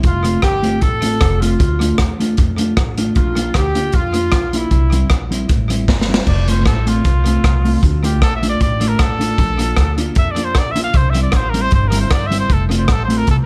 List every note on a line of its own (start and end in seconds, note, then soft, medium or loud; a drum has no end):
0.03 0.37 F1 loud
0.03 0.41 F4 medium
0.03 kick loud
0.03 closed hi-hat medium
0.24 0.39 A3 medium
0.24 0.39 C4 medium
0.24 0.40 F4 medium
0.24 closed hi-hat medium
0.42 0.76 G1 medium
0.42 0.79 G4 loud
0.42 kick medium
0.42 cross-stick loud
0.42 closed hi-hat medium
0.63 0.78 A3 medium
0.63 0.78 C4 medium
0.63 0.78 F4 medium
0.63 closed hi-hat medium
0.81 1.15 A1 medium
0.81 1.42 A4 loud
0.81 kick loud
0.81 closed hi-hat medium
1.02 1.17 A3 medium
1.02 1.17 C4 medium
1.02 1.18 F4 loud
1.02 closed hi-hat loud
1.21 1.54 F1 medium
1.21 kick loud
1.21 cross-stick loud
1.21 closed hi-hat medium
1.41 1.56 A3 medium
1.41 1.56 C4 medium
1.41 1.98 F4 medium
1.41 1.57 F4 medium
1.41 closed hi-hat loud
1.60 1.93 D2 loud
1.60 kick loud
1.60 closed hi-hat medium
1.80 1.95 A3 medium
1.80 1.95 D4 medium
1.80 1.96 F4 loud
1.80 closed hi-hat medium
1.98 2.32 E2 medium
1.98 kick medium
1.98 cross-stick loud
1.98 closed hi-hat medium
2.20 2.34 A3 medium
2.20 2.35 D4 medium
2.20 2.35 F4 medium
2.20 closed hi-hat medium
2.37 2.71 F2 medium
2.37 kick loud
2.37 closed hi-hat medium
2.58 2.73 A3 medium
2.58 2.74 D4 medium
2.58 2.74 F4 medium
2.58 closed hi-hat medium
2.77 3.10 A1 medium
2.77 kick loud
2.77 cross-stick loud
2.77 closed hi-hat medium
2.98 3.12 A3 medium
2.98 3.12 D4 medium
2.98 3.13 F4 medium
2.98 closed hi-hat loud
3.15 3.49 A#1 loud
3.15 3.53 F4 medium
3.15 kick loud
3.15 closed hi-hat medium
3.36 3.51 A#3 medium
3.36 3.51 D4 medium
3.36 3.52 F4 loud
3.36 closed hi-hat medium
3.54 3.88 D2 loud
3.54 3.94 G4 loud
3.54 kick loud
3.54 cross-stick loud
3.54 closed hi-hat medium
3.75 3.90 A#3 medium
3.75 3.90 D4 medium
3.75 3.90 F4 medium
3.75 closed hi-hat medium
3.92 4.27 F2 loud
3.92 4.54 F4 loud
3.92 kick loud
3.92 closed hi-hat medium
4.14 4.29 A#3 medium
4.14 4.29 D4 medium
4.14 4.29 F4 medium
4.14 closed hi-hat medium
4.32 4.66 A#1 medium
4.32 muted clean electric guitar stroke soft
4.32 kick loud
4.32 cross-stick loud
4.32 closed hi-hat medium
4.53 4.68 A#3 medium
4.53 4.68 D4 medium
4.53 5.12 E4 medium
4.53 4.68 F4 medium
4.53 closed hi-hat loud
4.71 5.05 C2 loud
4.71 kick loud
4.71 closed hi-hat medium
4.92 5.07 G3 medium
4.92 5.07 C4 medium
4.92 5.07 E4 loud
4.92 closed hi-hat loud
5.10 5.43 A#1 medium
5.10 kick loud
5.10 cross-stick loud
5.10 closed hi-hat medium
5.31 5.45 G3 medium
5.31 5.46 C4 medium
5.31 5.46 E4 loud
5.31 closed hi-hat medium
5.49 5.88 A1 medium
5.49 kick loud
5.49 closed hi-hat medium
5.69 5.84 G3 medium
5.69 5.85 C4 medium
5.69 5.85 E4 medium
5.69 closed hi-hat medium
5.88 6.21 G1 medium
5.88 kick loud
5.88 snare medium
6.01 snare medium
6.08 6.23 G3 medium
6.08 6.24 C4 medium
6.08 6.24 E4 medium
6.14 snare loud
6.27 6.66 F1 loud
6.27 6.51 D5 medium
6.27 kick loud
6.27 crash medium
6.48 6.62 A3 medium
6.48 6.63 C4 medium
6.48 6.63 F4 medium
6.48 6.66 C5 medium
6.48 closed hi-hat medium
6.66 6.99 A1 medium
6.66 6.90 A4 medium
6.66 kick loud
6.66 cross-stick loud
6.66 closed hi-hat medium
6.86 7.01 A3 medium
6.86 7.02 C4 medium
6.86 7.02 F4 medium
6.86 7.83 F4 medium
6.86 closed hi-hat medium
7.05 7.38 C2 loud
7.05 kick loud
7.05 closed hi-hat medium
7.26 7.40 A3 medium
7.26 7.41 C4 medium
7.26 7.41 F4 medium
7.26 closed hi-hat medium
7.44 7.77 C2 medium
7.44 kick loud
7.44 cross-stick loud
7.44 closed hi-hat medium
7.65 7.79 A3 medium
7.65 7.80 C4 medium
7.65 7.80 F4 loud
7.65 open hi-hat medium
7.83 8.22 D2 loud
7.83 kick loud
7.83 closed hi-hat medium
8.03 8.18 A3 medium
8.03 8.18 D4 medium
8.03 8.19 F4 loud
8.03 8.21 G4 medium
8.03 closed hi-hat loud
8.22 8.55 A#1 medium
8.22 8.34 A4 loud
8.22 kick medium
8.22 cross-stick loud
8.22 closed hi-hat medium
8.36 8.47 E5 medium
8.42 8.57 A3 medium
8.42 8.57 D4 loud
8.42 8.57 F4 loud
8.42 closed hi-hat medium
8.49 8.61 D5 medium
8.61 8.94 A1 loud
8.61 8.90 D5 medium
8.61 kick loud
8.61 closed hi-hat medium
8.81 8.96 A3 medium
8.81 8.96 D4 medium
8.81 8.96 F4 medium
8.81 closed hi-hat loud
8.88 9.03 A#4 medium
8.99 9.33 A1 medium
8.99 9.99 A4 medium
8.99 kick loud
8.99 cross-stick loud
8.99 closed hi-hat medium
9.19 9.34 A3 medium
9.19 9.35 D4 loud
9.19 9.35 F4 medium
9.19 closed hi-hat medium
9.38 9.72 A#1 loud
9.38 kick loud
9.38 closed hi-hat medium
9.59 9.74 A#3 medium
9.59 9.74 D4 medium
9.59 9.74 F4 loud
9.59 closed hi-hat loud
9.77 10.10 D2 loud
9.77 kick medium
9.77 cross-stick loud
9.77 closed hi-hat medium
9.97 10.12 A#3 medium
9.97 10.13 D4 loud
9.97 10.13 F4 loud
9.97 closed hi-hat medium
10.15 10.57 F2 medium
10.15 10.33 E5 medium
10.15 kick loud
10.15 closed hi-hat medium
10.31 10.46 D5 medium
10.36 10.51 A#3 medium
10.36 10.51 D4 medium
10.36 10.52 F4 medium
10.36 closed hi-hat medium
10.44 10.60 C5 medium
10.55 10.89 A#1 medium
10.55 10.73 D5 medium
10.55 kick loud
10.55 cross-stick loud
10.55 closed hi-hat medium
10.71 10.83 E5 loud
10.75 10.90 A#3 medium
10.75 10.91 D4 medium
10.75 10.91 F4 loud
10.75 closed hi-hat medium
10.84 10.99 F5 loud
10.94 11.27 C2 loud
10.94 11.12 C5 loud
10.94 kick loud
10.94 closed hi-hat medium
11.10 11.22 E5 medium
11.14 11.29 G3 medium
11.14 11.30 C4 medium
11.14 11.30 E4 loud
11.14 closed hi-hat loud
11.23 11.38 D5 medium
11.32 11.66 A1 medium
11.32 kick loud
11.32 cross-stick loud
11.32 closed hi-hat medium
11.36 11.51 C5 medium
11.50 11.68 G3 medium
11.50 11.63 A#4 medium
11.54 11.69 C4 loud
11.54 11.69 E4 medium
11.54 closed hi-hat medium
11.62 11.73 C5 loud
11.71 12.05 G1 loud
11.71 kick loud
11.71 closed hi-hat medium
11.75 11.89 C5 medium
11.88 12.07 G3 medium
11.88 11.99 A#4 medium
11.88 closed hi-hat loud
11.93 12.07 C4 medium
11.93 12.08 E4 loud
12.01 12.14 C5 medium
12.11 12.44 G1 medium
12.11 12.28 D5 loud
12.11 kick loud
12.11 cross-stick loud
12.11 closed hi-hat medium
12.27 12.38 E5 medium
12.31 12.46 G3 medium
12.31 12.46 C4 medium
12.31 12.46 E4 loud
12.31 closed hi-hat loud
12.40 12.55 C5 medium
12.50 12.89 F1 loud
12.50 12.64 A4 medium
12.50 kick loud
12.50 closed hi-hat medium
12.69 12.85 A3 medium
12.69 12.85 C4 loud
12.69 12.85 F4 loud
12.69 closed hi-hat loud
12.79 12.94 C5 medium
12.88 13.22 A1 medium
12.88 kick loud
12.88 cross-stick loud
12.88 closed hi-hat medium
12.92 13.03 A4 loud
13.05 13.23 A3 medium
13.05 13.19 C5 medium
13.09 13.24 C4 loud
13.09 13.24 F4 medium
13.09 closed hi-hat medium
13.18 13.29 A#4 loud
13.27 13.46 C2 loud
13.27 13.36 A4 medium
13.27 kick loud
13.27 closed hi-hat medium